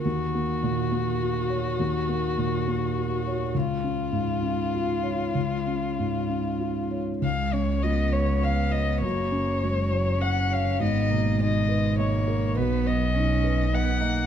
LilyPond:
<<
  \new Staff \with { instrumentName = "Violin" } { \time 3/4 \key des \mixolydian \tempo 4 = 102 ges'2.~ | ges'2. | f'2.~ | f'2~ f'8 r8 |
f''8 des''8 ees''8 des''8 f''8 ees''8 | des''2 ges''8 f''8 | ees''4 ees''4 des''4 | b'8 dis''4. fis''4 | }
  \new Staff \with { instrumentName = "Felt piano" } { \time 3/4 \key des \mixolydian ees,8 bes8 bes,8 bes8 ges'8 des''8 | ees,8 bes8 bes,8 bes8 ges'8 des''8 | des,8 des'8 aes,8 des'8 f'8 des''8 | des,8 des'8 aes,8 des'8 f'8 des''8 |
des,8 des'8 f'8 des''8 f''8 des''8 | ges,8 des'8 ges'8 des''8 ges''8 des''8 | aes,8 ces8 ees'8 ces''8 ees''8 bes'8 | b,,8 b8 dis'8 b'8 dis''8 dis''8 | }
  \new Staff \with { instrumentName = "Cello" } { \time 3/4 \key des \mixolydian r2. | r2. | r2. | r2. |
aes4 ces'2 | bes4 aes8 ges8 des'4 | ces'8 bes8 aes4 bes4 | b4 des'4 b8 bes8 | }
  \new Staff \with { instrumentName = "Double bass" } { \clef bass \time 3/4 \key des \mixolydian r2. | r2. | r2. | r2. |
des,2. | ges,,2. | aes,,2. | b,,2. | }
>>